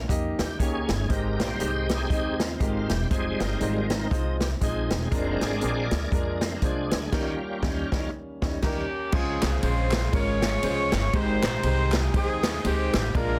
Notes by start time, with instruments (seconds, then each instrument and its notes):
Already playing: french horn section D#3 A#3 C#4 D#4
0.08 upright bass F2, grand piano A#3 D#4 G4 D#5, kick, closed hi-hat
0.39 upright bass D#2, tonewheel organ G4, snare, closed hi-hat
0.58 upright bass C#2, grand piano A#3 D#4 G4 C#5, tonewheel organ C#4 G#4, kick, closed hi-hat
0.89 upright bass G1, snare, closed hi-hat
1.08 upright bass G#1, grand piano G#2 G#3 D#4 G4 C5, french horn section C4, tonewheel organ D#4 G4 A#4, kick, closed hi-hat
1.39 upright bass A#1, tonewheel organ G3 A#3 C4 D#4 G4 C5, snare, closed hi-hat
1.59 upright bass C2, grand piano G#3 D#4 G4 C5, closed hi-hat
1.89 tonewheel organ C4 D#4 G#4, snare, closed hi-hat
2.10 upright bass D#2, grand piano G#3 D#4 G4 D#5, kick, closed hi-hat
2.39 tonewheel organ C4 F4, snare, closed hi-hat
2.59 upright bass G#1, grand piano G#3 D#4 G4 A#4, kick, closed hi-hat
2.89 upright bass E1, tonewheel organ G4, snare, closed hi-hat
3.10 upright bass F1, french horn section F3, tonewheel organ G3 G#3 C4 D#4 G#4, grand piano G#3 D#4 F4 C5, kick, closed hi-hat
3.40 upright bass G1, tonewheel organ D#4 A#4, snare, closed hi-hat
3.60 upright bass G#1, grand piano G#3 D#4 F4 C5, closed hi-hat
3.90 snare, closed hi-hat
4.10 upright bass C2, grand piano G#3 D#4 F4 C5, kick, closed hi-hat
4.40 tonewheel organ G4, snare, closed hi-hat
4.61 upright bass A#1, grand piano G#3 D#4 F4 D#5, tonewheel organ C4 D#4 G#4, kick, closed hi-hat
4.90 upright bass E1, snare, closed hi-hat
5.11 upright bass F1, grand piano G#3 D4 F4 A#4, tonewheel organ G#3 C4 D4 A#4, french horn section A#3 D4, kick, closed hi-hat
5.41 upright bass G#1, tonewheel organ G#4 A#4 D5, snare, closed hi-hat
5.61 upright bass A#1, grand piano G#3 D4 F4 A#4, closed hi-hat
5.91 upright bass D2, snare, closed hi-hat
6.11 upright bass F2, grand piano G#3 D4 F4 A#4, tonewheel organ D4 A#4, kick, closed hi-hat
6.41 tonewheel organ G#3 C4 D4, snare, closed hi-hat
6.62 upright bass C2, grand piano G#3 D4 F4 C5, tonewheel organ D4 G#4, kick, closed hi-hat
6.91 upright bass D2, snare, closed hi-hat
7.12 upright bass D#2, grand piano D#3 G3 C#4 D#4 A#4, french horn section D#3 G3 C#4, tonewheel organ G3 A#3 C#4 F4 G4, kick, snare, crash
7.62 upright bass D#2, grand piano G3 C#4 D#4, kick, snare
7.92 upright bass D#2, grand piano G3 C#4 D#4, tonewheel organ G3 C#4 F4, kick, snare
8.42 upright bass D#2, grand piano G3 C#4 D#4, kick, snare
8.62 upright bass D#2, grand piano G3 C#4 D#4 A#4, horn section A#3 C#4 G4, kick, snare, crash
9.12 upright bass C#2, grand piano C#3 G#3 C#4 F4 C5, tonewheel organ C#3 F3 G#3 G#4, horn section C4 F4 G#4, kick, crash
9.42 upright bass C2, snare, clap, ride
9.62 upright bass A#1, grand piano G#3 C#4 F4 C5, horn section F4 G#4 C5, ride
9.92 snare, clap, ride
10.12 upright bass G#1, grand piano G#3 C#4 F4 A#4, horn section F4 G#4 C#5, kick, ride
10.42 snare, clap, ride
10.62 upright bass C2, grand piano G#3 C#4 F4 C5, ride
10.92 upright bass G1, snare, clap, ride
11.13 upright bass G#1, grand piano G#2 G#3 D#4 G4 C5, tonewheel organ D#3 G#3 C4 G5, horn section D#4 G4 C5, kick, ride
11.43 upright bass A#1, snare, clap, ride
11.63 upright bass C2, grand piano G#3 D#4 G4 C5, ride
11.92 horn section G#4, snare, clap, ride
12.14 upright bass D#2, grand piano G#3 D#4 G4 C5, horn section C4 D#4 G#4, kick, ride
12.43 snare, clap, ride
12.64 upright bass C#2, grand piano G#3 D#4 G4 C5, horn section C4 D#4 G4, ride
12.94 upright bass A1, snare, clap, ride
13.14 upright bass A#1, grand piano A#2 G#3 D4 F4 A#4, tonewheel organ F3 A#3 D4 G4, horn section D4 F4 A#4, kick, ride
13.21 tonewheel organ G#4